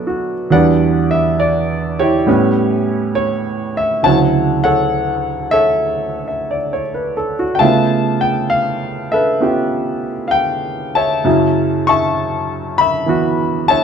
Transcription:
0.00 0.50 B2 soft
0.00 0.51 F#3 soft
0.00 0.51 A3 soft
0.00 0.52 B3 soft
0.00 0.50 D4 soft
0.00 0.52 E4 soft
0.00 0.07 F#4 soft
0.00 0.53 A4 soft
0.00 0.52 B4 soft
0.00 0.51 D5 medium
0.07 0.69 F#4 soft
0.50 2.27 E2 medium
0.50 2.28 E3 soft
0.50 2.26 G3 soft
0.50 2.28 D4 medium
0.50 2.24 B4 medium
0.50 1.38 D5 medium
0.50 0.66 F#5 medium
1.11 1.37 E5 medium
1.40 2.02 D5 medium
1.99 3.73 E4 medium
1.99 3.73 G4 medium
1.99 3.12 C#5 medium
2.26 4.04 A2 medium
2.26 4.04 G3 medium
2.26 4.05 B3 soft
2.26 4.05 C#4 medium
3.15 3.78 C#5 medium
3.77 4.06 E5 medium
4.03 7.60 D2 soft
4.03 7.58 C#3 soft
4.03 7.62 F#3 soft
4.03 4.63 C#5 medium
4.03 4.62 F#5 medium
4.03 4.17 A5 medium
4.08 7.63 E4 soft
4.64 5.52 A4 medium
4.64 5.51 C#5 medium
4.64 5.55 F#5 medium
5.51 7.15 A4 medium
5.51 6.72 C#5 medium
5.51 6.26 E5 medium
6.28 6.55 E5 soft
6.51 6.82 D5 soft
6.73 7.15 C#5 soft
6.94 7.33 B4 soft
7.17 7.44 A4 soft
7.39 7.70 F#4 soft
7.55 7.60 G5 medium
7.59 11.24 C#3 soft
7.59 11.25 A3 soft
7.59 9.39 B3 soft
7.59 9.10 E5 medium
7.59 8.48 F5 medium
7.59 8.17 A5 medium
7.64 9.40 F4 soft
8.21 8.51 G5 medium
8.50 8.64 F5 medium
9.12 10.92 A4 medium
9.12 10.93 B4 medium
9.12 10.32 E5 medium
9.40 11.25 B3 soft
9.40 11.25 C#4 soft
9.40 11.26 F4 soft
9.40 11.26 G4 soft
10.28 10.33 F5 medium
10.28 10.91 G5 medium
10.95 12.75 C#5 medium
10.95 11.87 E5 medium
10.95 11.83 A5 medium
11.24 13.84 F#2 medium
11.24 13.84 C#3 soft
11.24 13.84 F#3 soft
11.24 13.84 E4 medium
11.87 12.79 E5 medium
11.87 13.66 A5 medium
11.87 12.74 C#6 medium
12.78 13.69 E5 medium
12.78 13.72 B5 medium
13.06 13.84 E3 soft
13.06 13.84 B3 soft
13.06 13.84 F#4 soft
13.68 13.84 C#5 medium
13.68 13.84 E5 medium
13.68 13.84 A5 medium

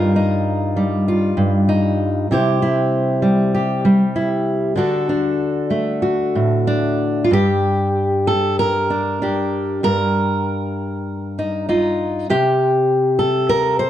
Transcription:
0.00 1.36 G2 medium
0.00 0.76 G3 soft
0.00 0.15 D#4 soft
0.00 1.07 F4 soft
0.00 2.29 A#4 medium
0.16 1.67 D#4 soft
0.76 3.21 G3 medium
1.08 2.27 F4 medium
1.37 2.30 G2 medium
1.69 2.27 D#4 medium
2.31 4.73 C3 medium
2.31 2.61 E4 soft
2.31 3.53 G4 medium
2.31 4.75 C5 medium
2.62 4.14 E4 medium
3.22 3.84 G3 medium
3.54 4.74 G4 medium
3.85 4.73 G3 medium
4.16 4.73 E4 medium
4.76 7.30 D3 medium
4.76 5.08 D4 soft
4.76 6.01 F#4 soft
4.76 7.32 A4 medium
5.09 6.66 D4 soft
5.70 7.27 A3 soft
6.02 7.24 F#4 soft
6.35 7.28 A2 medium
6.67 7.28 D4 medium
7.24 7.31 F4 medium
7.31 9.82 G2 medium
7.31 8.90 G4 medium
8.27 8.58 A4 medium
8.59 9.83 A#4 medium
8.90 9.21 D4 soft
9.22 9.80 D4 soft
9.22 11.69 G4 soft
9.83 12.29 G2 medium
9.83 12.30 A#4 medium
11.39 11.68 D#4 soft
11.69 12.26 D#4 soft
11.69 12.26 F4 soft
12.30 13.90 C3 medium
12.30 13.84 G4 medium
13.19 13.90 A4 medium
13.49 13.79 A#4 medium
13.79 13.90 C5 medium

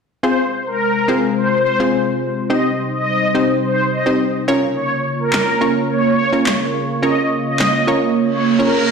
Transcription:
0.23 4.44 C3 medium
0.23 2.48 G#3 medium
0.23 0.73 C4 medium
0.23 2.48 F4 medium
0.23 0.74 F4 medium
0.23 0.74 G#4 medium
0.23 0.37 C5 loud
0.23 4.44 C5 medium
0.23 0.74 C5 medium
0.67 1.06 A#4 medium
1.08 1.51 C4 medium
1.08 1.51 F4 medium
1.08 1.51 G#4 medium
1.08 1.51 C5 medium
1.37 1.61 C5 medium
1.65 1.78 C5 medium
1.80 2.21 C4 medium
1.80 2.21 F4 medium
1.80 2.21 G#4 medium
1.80 2.21 C5 medium
2.50 4.46 G3 medium
2.50 3.00 C4 medium
2.50 4.46 D#4 medium
2.50 3.00 D#4 medium
2.50 3.00 G4 medium
2.50 3.00 C5 medium
2.50 2.63 D#5 loud
2.93 3.32 D#5 medium
3.35 3.77 C4 medium
3.35 3.77 D#4 medium
3.35 3.77 G4 medium
3.35 3.77 C5 medium
3.63 3.88 C5 medium
3.92 4.05 D#5 medium
4.06 4.47 C4 medium
4.06 4.47 D#4 medium
4.06 4.47 G4 medium
4.06 4.47 C5 medium
4.48 8.91 C#3 medium
4.48 8.91 A#3 medium
4.48 5.39 C#4 loud
4.48 5.39 F4 medium
4.48 8.91 F4 medium
4.48 5.39 A#4 medium
4.48 8.91 C#5 medium
4.48 5.39 C#5 loud
4.76 4.89 C#5 loud
5.20 5.59 A#4 medium
5.33 snare medium
5.33 clap loud
5.61 6.03 C#4 medium
5.61 6.03 F4 medium
5.61 6.04 A#4 medium
5.61 6.04 C#5 medium
5.89 6.14 C#5 medium
6.18 6.31 C#5 medium
6.33 6.73 C#4 medium
6.33 6.73 F4 medium
6.33 6.74 A#4 medium
6.33 6.74 C#5 medium
6.46 snare medium
6.46 clap loud
7.03 7.53 C#4 medium
7.03 7.53 F4 medium
7.03 7.53 A#4 medium
7.03 7.53 C#5 medium
7.03 7.16 D#5 loud
7.46 7.85 D#5 medium
7.59 snare medium
7.59 clap loud
7.87 8.30 C#4 medium
7.87 8.30 F4 medium
7.87 8.30 A#4 medium
7.87 8.30 C#5 medium
8.16 reverse cymbal medium
8.31 8.43 C#5 medium
8.59 8.91 C#4 medium
8.59 8.91 F4 medium
8.59 8.91 A#4 medium
8.59 8.71 A#4 medium
8.59 8.91 C#5 medium
8.73 8.86 A#4 medium

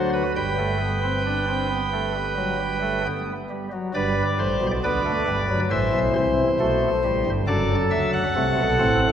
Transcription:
0.00 0.23 D2 medium
0.00 0.22 D3 medium
0.00 0.23 F#3 medium
0.00 0.22 F#4 medium
0.13 0.32 B4 medium
0.36 3.06 G1 medium
0.36 3.06 G2 medium
0.36 0.55 G3 medium
0.36 3.06 B4 medium
0.36 3.06 G5 medium
0.58 0.77 A3 medium
0.80 0.99 B3 medium
1.03 1.22 C4 medium
1.26 1.45 D4 medium
1.48 1.67 C4 medium
1.70 1.89 B3 medium
1.93 2.12 A3 soft
2.15 2.34 G3 medium
2.37 2.56 F#3 soft
2.59 2.79 G3 medium
2.82 3.01 A3 medium
3.04 3.32 B3 medium
3.50 3.69 G3 medium
3.72 3.92 F#3 soft
3.94 4.22 G1 medium
3.94 4.22 G2 medium
3.94 4.71 G3 medium
3.94 4.22 B4 medium
3.94 4.71 D5 medium
4.39 4.58 A1 medium
4.39 4.58 A2 medium
4.39 4.66 C5 medium
4.61 4.81 B1 medium
4.61 4.80 B2 medium
4.84 5.11 D2 medium
4.84 5.11 D3 medium
4.84 5.03 B3 medium
4.84 5.59 B4 medium
4.84 5.59 D5 medium
5.05 5.24 A3 medium
5.27 5.55 G1 medium
5.27 5.55 G2 medium
5.27 5.46 G3 medium
5.49 5.68 F#3 medium
5.70 5.90 A1 medium
5.70 5.90 A2 medium
5.70 6.47 E3 medium
5.70 6.13 C5 medium
5.70 5.98 E5 medium
5.92 6.12 B1 medium
5.92 6.12 B2 medium
6.15 6.43 C2 medium
6.15 6.43 C3 medium
6.15 7.30 C5 medium
6.60 6.87 B1 medium
6.60 6.87 B2 medium
6.60 6.87 A3 medium
7.04 7.23 A1 medium
7.04 7.23 A2 medium
7.04 7.32 G3 medium
7.26 7.45 G1 medium
7.26 7.45 G2 medium
7.47 7.75 F#1 medium
7.47 7.75 F#2 medium
7.47 8.23 F#3 medium
7.47 8.99 A4 medium
7.47 7.75 D5 medium
7.91 8.19 D2 medium
7.91 8.19 D3 medium
7.91 8.10 E5 medium
8.13 9.09 F#5 medium
8.35 8.55 C2 medium
8.35 8.55 C3 medium
8.35 8.63 A3 medium
8.58 8.77 B1 medium
8.58 8.77 B2 medium
8.79 9.07 A1 medium
8.79 9.07 A2 medium
8.79 9.07 C4 medium

